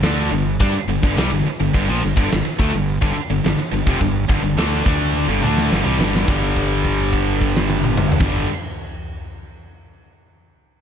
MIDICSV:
0, 0, Header, 1, 7, 480
1, 0, Start_track
1, 0, Tempo, 568182
1, 1468, Time_signature, 4, 2, 24, 8
1, 9134, End_track
2, 0, Start_track
2, 0, Title_t, "Distorted electric guitar"
2, 0, Program_c, 0, 30
2, 28, Note_on_c, 0, 50, 96
2, 36, Note_on_c, 0, 57, 97
2, 41, Note_on_c, 0, 62, 107
2, 260, Note_off_c, 0, 50, 0
2, 264, Note_off_c, 0, 57, 0
2, 267, Note_off_c, 0, 62, 0
2, 273, Note_on_c, 0, 43, 70
2, 276, Note_on_c, 0, 50, 76
2, 462, Note_off_c, 0, 43, 0
2, 464, Note_off_c, 0, 50, 0
2, 516, Note_on_c, 0, 55, 101
2, 519, Note_on_c, 0, 62, 115
2, 625, Note_off_c, 0, 55, 0
2, 626, Note_off_c, 0, 62, 0
2, 755, Note_on_c, 0, 43, 68
2, 763, Note_on_c, 0, 50, 77
2, 869, Note_off_c, 0, 43, 0
2, 875, Note_off_c, 0, 50, 0
2, 879, Note_on_c, 0, 43, 85
2, 887, Note_on_c, 0, 50, 116
2, 986, Note_off_c, 0, 43, 0
2, 990, Note_off_c, 0, 50, 0
2, 994, Note_on_c, 0, 48, 99
2, 997, Note_on_c, 0, 55, 109
2, 1104, Note_off_c, 0, 48, 0
2, 1105, Note_off_c, 0, 55, 0
2, 1118, Note_on_c, 0, 43, 68
2, 1118, Note_on_c, 0, 50, 75
2, 1227, Note_off_c, 0, 43, 0
2, 1233, Note_off_c, 0, 50, 0
2, 1356, Note_on_c, 0, 50, 69
2, 1357, Note_on_c, 0, 43, 64
2, 1455, Note_off_c, 0, 43, 0
2, 1465, Note_on_c, 0, 43, 90
2, 1466, Note_off_c, 0, 50, 0
2, 1476, Note_on_c, 0, 50, 100
2, 1580, Note_off_c, 0, 43, 0
2, 1585, Note_off_c, 0, 50, 0
2, 1595, Note_on_c, 0, 46, 83
2, 1605, Note_on_c, 0, 53, 95
2, 1705, Note_off_c, 0, 46, 0
2, 1710, Note_off_c, 0, 53, 0
2, 1710, Note_on_c, 0, 43, 65
2, 1714, Note_on_c, 0, 50, 67
2, 1823, Note_off_c, 0, 43, 0
2, 1827, Note_off_c, 0, 50, 0
2, 1833, Note_on_c, 0, 43, 98
2, 1837, Note_on_c, 0, 50, 108
2, 1941, Note_off_c, 0, 43, 0
2, 1946, Note_off_c, 0, 50, 0
2, 1951, Note_on_c, 0, 43, 67
2, 1956, Note_on_c, 0, 50, 72
2, 2059, Note_off_c, 0, 43, 0
2, 2072, Note_off_c, 0, 50, 0
2, 2187, Note_on_c, 0, 50, 89
2, 2194, Note_on_c, 0, 57, 104
2, 2300, Note_off_c, 0, 50, 0
2, 2304, Note_off_c, 0, 57, 0
2, 2313, Note_on_c, 0, 43, 64
2, 2317, Note_on_c, 0, 50, 75
2, 2503, Note_off_c, 0, 43, 0
2, 2505, Note_off_c, 0, 50, 0
2, 2549, Note_on_c, 0, 43, 84
2, 2555, Note_on_c, 0, 50, 100
2, 2661, Note_off_c, 0, 43, 0
2, 2665, Note_off_c, 0, 50, 0
2, 2790, Note_on_c, 0, 43, 71
2, 2797, Note_on_c, 0, 50, 77
2, 2900, Note_off_c, 0, 43, 0
2, 2905, Note_off_c, 0, 50, 0
2, 2910, Note_on_c, 0, 43, 68
2, 2915, Note_on_c, 0, 50, 76
2, 3020, Note_off_c, 0, 43, 0
2, 3032, Note_off_c, 0, 50, 0
2, 3140, Note_on_c, 0, 43, 60
2, 3145, Note_on_c, 0, 50, 79
2, 3261, Note_off_c, 0, 43, 0
2, 3264, Note_on_c, 0, 41, 88
2, 3267, Note_off_c, 0, 50, 0
2, 3274, Note_on_c, 0, 48, 100
2, 3378, Note_off_c, 0, 41, 0
2, 3381, Note_on_c, 0, 43, 67
2, 3384, Note_off_c, 0, 48, 0
2, 3388, Note_on_c, 0, 50, 71
2, 3576, Note_off_c, 0, 43, 0
2, 3580, Note_off_c, 0, 50, 0
2, 3619, Note_on_c, 0, 43, 98
2, 3628, Note_on_c, 0, 50, 112
2, 3736, Note_off_c, 0, 43, 0
2, 3738, Note_off_c, 0, 50, 0
2, 3746, Note_on_c, 0, 43, 69
2, 3748, Note_on_c, 0, 50, 79
2, 3852, Note_off_c, 0, 50, 0
2, 3862, Note_on_c, 0, 50, 82
2, 3865, Note_on_c, 0, 57, 100
2, 3867, Note_off_c, 0, 43, 0
2, 3875, Note_on_c, 0, 62, 102
2, 4086, Note_off_c, 0, 50, 0
2, 4091, Note_off_c, 0, 57, 0
2, 4094, Note_off_c, 0, 62, 0
2, 4097, Note_on_c, 0, 50, 92
2, 4101, Note_on_c, 0, 57, 107
2, 4104, Note_on_c, 0, 62, 105
2, 4448, Note_off_c, 0, 50, 0
2, 4454, Note_on_c, 0, 43, 80
2, 4457, Note_off_c, 0, 57, 0
2, 4458, Note_off_c, 0, 62, 0
2, 4458, Note_on_c, 0, 50, 97
2, 4569, Note_off_c, 0, 50, 0
2, 4573, Note_off_c, 0, 43, 0
2, 4580, Note_on_c, 0, 50, 92
2, 4587, Note_on_c, 0, 57, 92
2, 4591, Note_on_c, 0, 62, 93
2, 4816, Note_off_c, 0, 50, 0
2, 4819, Note_off_c, 0, 57, 0
2, 4819, Note_on_c, 0, 43, 99
2, 4822, Note_off_c, 0, 62, 0
2, 4826, Note_on_c, 0, 50, 105
2, 4922, Note_off_c, 0, 50, 0
2, 4925, Note_on_c, 0, 48, 88
2, 4935, Note_off_c, 0, 43, 0
2, 4935, Note_on_c, 0, 55, 93
2, 5045, Note_off_c, 0, 55, 0
2, 5048, Note_off_c, 0, 48, 0
2, 5048, Note_on_c, 0, 43, 86
2, 5053, Note_on_c, 0, 50, 91
2, 5055, Note_on_c, 0, 55, 102
2, 5275, Note_off_c, 0, 43, 0
2, 5285, Note_on_c, 0, 43, 99
2, 5292, Note_off_c, 0, 50, 0
2, 5293, Note_off_c, 0, 55, 0
2, 5305, Note_on_c, 0, 50, 105
2, 5318, Note_on_c, 0, 55, 105
2, 6918, Note_off_c, 0, 43, 0
2, 6921, Note_on_c, 0, 43, 97
2, 6937, Note_off_c, 0, 50, 0
2, 6941, Note_on_c, 0, 50, 99
2, 6950, Note_off_c, 0, 55, 0
2, 6954, Note_on_c, 0, 55, 108
2, 7145, Note_off_c, 0, 43, 0
2, 7155, Note_off_c, 0, 50, 0
2, 7161, Note_off_c, 0, 55, 0
2, 9134, End_track
3, 0, Start_track
3, 0, Title_t, "Fingered electric bass"
3, 0, Program_c, 1, 33
3, 21, Note_on_c, 1, 38, 95
3, 247, Note_off_c, 1, 38, 0
3, 260, Note_on_c, 1, 31, 82
3, 487, Note_off_c, 1, 31, 0
3, 507, Note_on_c, 1, 43, 96
3, 619, Note_off_c, 1, 43, 0
3, 739, Note_on_c, 1, 31, 78
3, 855, Note_off_c, 1, 31, 0
3, 870, Note_on_c, 1, 31, 96
3, 978, Note_off_c, 1, 31, 0
3, 983, Note_on_c, 1, 36, 94
3, 1097, Note_off_c, 1, 36, 0
3, 1114, Note_on_c, 1, 31, 83
3, 1223, Note_off_c, 1, 31, 0
3, 1356, Note_on_c, 1, 31, 88
3, 1464, Note_off_c, 1, 31, 0
3, 1472, Note_on_c, 1, 31, 97
3, 1582, Note_off_c, 1, 31, 0
3, 1599, Note_on_c, 1, 34, 94
3, 1706, Note_off_c, 1, 34, 0
3, 1722, Note_on_c, 1, 31, 79
3, 1825, Note_off_c, 1, 31, 0
3, 1830, Note_on_c, 1, 31, 96
3, 1941, Note_off_c, 1, 31, 0
3, 1964, Note_on_c, 1, 31, 87
3, 2068, Note_off_c, 1, 31, 0
3, 2190, Note_on_c, 1, 38, 95
3, 2301, Note_off_c, 1, 38, 0
3, 2314, Note_on_c, 1, 31, 83
3, 2535, Note_off_c, 1, 31, 0
3, 2552, Note_on_c, 1, 31, 97
3, 2662, Note_off_c, 1, 31, 0
3, 2788, Note_on_c, 1, 31, 84
3, 2900, Note_off_c, 1, 31, 0
3, 2914, Note_on_c, 1, 31, 83
3, 3023, Note_off_c, 1, 31, 0
3, 3145, Note_on_c, 1, 31, 88
3, 3258, Note_off_c, 1, 31, 0
3, 3264, Note_on_c, 1, 29, 103
3, 3378, Note_off_c, 1, 29, 0
3, 3388, Note_on_c, 1, 31, 83
3, 3611, Note_off_c, 1, 31, 0
3, 3622, Note_on_c, 1, 31, 92
3, 3731, Note_off_c, 1, 31, 0
3, 3736, Note_on_c, 1, 31, 78
3, 3843, Note_off_c, 1, 31, 0
3, 3848, Note_on_c, 1, 38, 92
3, 4080, Note_off_c, 1, 38, 0
3, 4105, Note_on_c, 1, 38, 94
3, 4441, Note_off_c, 1, 38, 0
3, 4459, Note_on_c, 1, 31, 97
3, 4574, Note_off_c, 1, 31, 0
3, 4589, Note_on_c, 1, 38, 92
3, 4811, Note_off_c, 1, 38, 0
3, 4828, Note_on_c, 1, 31, 91
3, 4939, Note_off_c, 1, 31, 0
3, 4943, Note_on_c, 1, 36, 101
3, 5054, Note_off_c, 1, 36, 0
3, 5059, Note_on_c, 1, 31, 101
3, 5285, Note_off_c, 1, 31, 0
3, 5306, Note_on_c, 1, 31, 95
3, 6845, Note_off_c, 1, 31, 0
3, 6930, Note_on_c, 1, 31, 97
3, 7134, Note_off_c, 1, 31, 0
3, 9134, End_track
4, 0, Start_track
4, 0, Title_t, "Muted distorted electric guitar strokes"
4, 637, Note_on_c, 9, 29, 63
4, 722, Note_off_c, 9, 29, 0
4, 1238, Note_on_c, 9, 29, 58
4, 1322, Note_off_c, 9, 29, 0
4, 2069, Note_on_c, 9, 29, 57
4, 2153, Note_off_c, 9, 29, 0
4, 2675, Note_on_c, 9, 29, 62
4, 2760, Note_off_c, 9, 29, 0
4, 3031, Note_on_c, 9, 29, 57
4, 3115, Note_off_c, 9, 29, 0
4, 9134, End_track
5, 0, Start_track
5, 0, Title_t, "Muted fingered electric bass strokes"
5, 626, Note_on_c, 9, 29, 42
5, 710, Note_off_c, 9, 29, 0
5, 1240, Note_on_c, 9, 29, 45
5, 1324, Note_off_c, 9, 29, 0
5, 2084, Note_on_c, 9, 29, 40
5, 2168, Note_off_c, 9, 29, 0
5, 2672, Note_on_c, 9, 29, 44
5, 2757, Note_off_c, 9, 29, 0
5, 3032, Note_on_c, 9, 29, 44
5, 3117, Note_off_c, 9, 29, 0
5, 9134, End_track
6, 0, Start_track
6, 0, Title_t, "Muted overdriven electric guitar strokes"
6, 627, Note_on_c, 9, 29, 58
6, 712, Note_off_c, 9, 29, 0
6, 1230, Note_on_c, 9, 29, 63
6, 1314, Note_off_c, 9, 29, 0
6, 2075, Note_on_c, 9, 29, 61
6, 2160, Note_off_c, 9, 29, 0
6, 2666, Note_on_c, 9, 29, 61
6, 2750, Note_off_c, 9, 29, 0
6, 3033, Note_on_c, 9, 29, 60
6, 3117, Note_off_c, 9, 29, 0
6, 9134, End_track
7, 0, Start_track
7, 0, Title_t, "Drums"
7, 19, Note_on_c, 9, 46, 81
7, 29, Note_on_c, 9, 38, 117
7, 104, Note_off_c, 9, 46, 0
7, 114, Note_off_c, 9, 38, 0
7, 266, Note_on_c, 9, 46, 59
7, 351, Note_off_c, 9, 46, 0
7, 510, Note_on_c, 9, 36, 109
7, 513, Note_on_c, 9, 46, 82
7, 595, Note_off_c, 9, 36, 0
7, 597, Note_off_c, 9, 46, 0
7, 755, Note_on_c, 9, 46, 64
7, 840, Note_off_c, 9, 46, 0
7, 873, Note_on_c, 9, 36, 102
7, 957, Note_off_c, 9, 36, 0
7, 990, Note_on_c, 9, 46, 89
7, 1000, Note_on_c, 9, 38, 118
7, 1074, Note_off_c, 9, 46, 0
7, 1084, Note_off_c, 9, 38, 0
7, 1234, Note_on_c, 9, 46, 65
7, 1318, Note_off_c, 9, 46, 0
7, 1473, Note_on_c, 9, 36, 105
7, 1473, Note_on_c, 9, 49, 102
7, 1558, Note_off_c, 9, 36, 0
7, 1558, Note_off_c, 9, 49, 0
7, 1712, Note_on_c, 9, 46, 64
7, 1797, Note_off_c, 9, 46, 0
7, 1834, Note_on_c, 9, 36, 105
7, 1918, Note_off_c, 9, 36, 0
7, 1955, Note_on_c, 9, 46, 88
7, 1965, Note_on_c, 9, 38, 109
7, 2040, Note_off_c, 9, 46, 0
7, 2050, Note_off_c, 9, 38, 0
7, 2192, Note_on_c, 9, 36, 106
7, 2192, Note_on_c, 9, 46, 64
7, 2277, Note_off_c, 9, 36, 0
7, 2277, Note_off_c, 9, 46, 0
7, 2434, Note_on_c, 9, 46, 89
7, 2518, Note_off_c, 9, 46, 0
7, 2553, Note_on_c, 9, 36, 109
7, 2637, Note_off_c, 9, 36, 0
7, 2672, Note_on_c, 9, 46, 70
7, 2757, Note_off_c, 9, 46, 0
7, 2913, Note_on_c, 9, 46, 96
7, 2923, Note_on_c, 9, 38, 117
7, 2998, Note_off_c, 9, 46, 0
7, 3008, Note_off_c, 9, 38, 0
7, 3149, Note_on_c, 9, 46, 68
7, 3234, Note_off_c, 9, 46, 0
7, 3268, Note_on_c, 9, 36, 110
7, 3353, Note_off_c, 9, 36, 0
7, 3387, Note_on_c, 9, 36, 91
7, 3387, Note_on_c, 9, 46, 84
7, 3471, Note_off_c, 9, 46, 0
7, 3472, Note_off_c, 9, 36, 0
7, 3628, Note_on_c, 9, 36, 107
7, 3629, Note_on_c, 9, 46, 59
7, 3712, Note_off_c, 9, 36, 0
7, 3714, Note_off_c, 9, 46, 0
7, 3864, Note_on_c, 9, 46, 79
7, 3874, Note_on_c, 9, 38, 115
7, 3948, Note_off_c, 9, 46, 0
7, 3958, Note_off_c, 9, 38, 0
7, 4106, Note_on_c, 9, 46, 61
7, 4107, Note_on_c, 9, 36, 106
7, 4191, Note_off_c, 9, 36, 0
7, 4191, Note_off_c, 9, 46, 0
7, 4237, Note_on_c, 9, 38, 34
7, 4321, Note_off_c, 9, 38, 0
7, 4346, Note_on_c, 9, 48, 69
7, 4431, Note_off_c, 9, 48, 0
7, 4581, Note_on_c, 9, 47, 77
7, 4665, Note_off_c, 9, 47, 0
7, 4711, Note_on_c, 9, 38, 66
7, 4796, Note_off_c, 9, 38, 0
7, 4837, Note_on_c, 9, 38, 95
7, 4921, Note_off_c, 9, 38, 0
7, 5076, Note_on_c, 9, 38, 105
7, 5161, Note_off_c, 9, 38, 0
7, 5202, Note_on_c, 9, 38, 98
7, 5286, Note_off_c, 9, 38, 0
7, 5307, Note_on_c, 9, 36, 108
7, 5308, Note_on_c, 9, 49, 87
7, 5391, Note_off_c, 9, 36, 0
7, 5393, Note_off_c, 9, 49, 0
7, 5545, Note_on_c, 9, 36, 63
7, 5546, Note_on_c, 9, 49, 45
7, 5630, Note_off_c, 9, 36, 0
7, 5630, Note_off_c, 9, 49, 0
7, 5663, Note_on_c, 9, 57, 48
7, 5747, Note_off_c, 9, 57, 0
7, 5784, Note_on_c, 9, 36, 67
7, 5786, Note_on_c, 9, 49, 49
7, 5869, Note_off_c, 9, 36, 0
7, 5871, Note_off_c, 9, 49, 0
7, 5904, Note_on_c, 9, 57, 49
7, 5989, Note_off_c, 9, 57, 0
7, 6021, Note_on_c, 9, 49, 50
7, 6023, Note_on_c, 9, 36, 65
7, 6106, Note_off_c, 9, 49, 0
7, 6107, Note_off_c, 9, 36, 0
7, 6144, Note_on_c, 9, 57, 50
7, 6229, Note_off_c, 9, 57, 0
7, 6262, Note_on_c, 9, 49, 52
7, 6263, Note_on_c, 9, 36, 67
7, 6346, Note_off_c, 9, 49, 0
7, 6347, Note_off_c, 9, 36, 0
7, 6392, Note_on_c, 9, 38, 94
7, 6476, Note_off_c, 9, 38, 0
7, 6502, Note_on_c, 9, 48, 95
7, 6587, Note_off_c, 9, 48, 0
7, 6621, Note_on_c, 9, 47, 91
7, 6706, Note_off_c, 9, 47, 0
7, 6737, Note_on_c, 9, 45, 108
7, 6821, Note_off_c, 9, 45, 0
7, 6857, Note_on_c, 9, 43, 120
7, 6928, Note_on_c, 9, 49, 115
7, 6932, Note_on_c, 9, 36, 127
7, 6938, Note_on_c, 9, 38, 111
7, 6941, Note_off_c, 9, 43, 0
7, 7012, Note_off_c, 9, 49, 0
7, 7017, Note_off_c, 9, 36, 0
7, 7022, Note_off_c, 9, 38, 0
7, 9134, End_track
0, 0, End_of_file